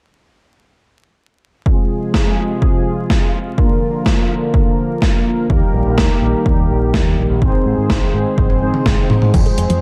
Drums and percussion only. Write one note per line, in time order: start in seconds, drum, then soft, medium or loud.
1.66 kick loud
2.14 kick loud
2.14 snare loud
2.62 kick loud
3.10 kick loud
3.10 snare loud
3.58 kick loud
4.06 kick loud
4.06 snare loud
4.54 kick loud
5.02 kick loud
5.02 snare loud
5.50 kick loud
5.98 kick loud
5.98 snare loud
6.46 kick loud
6.94 kick loud
6.94 snare loud
7.42 kick loud
7.90 kick loud
7.90 snare loud
8.38 kick loud
8.38 high tom medium
8.50 high tom medium
8.74 mid tom medium
8.86 kick loud
8.86 snare loud
8.86 mid tom medium
9.10 mid tom loud
9.22 mid tom medium
9.34 kick loud
9.34 closed hi-hat medium
9.34 crash medium
9.46 closed hi-hat soft
9.58 closed hi-hat medium
9.70 closed hi-hat medium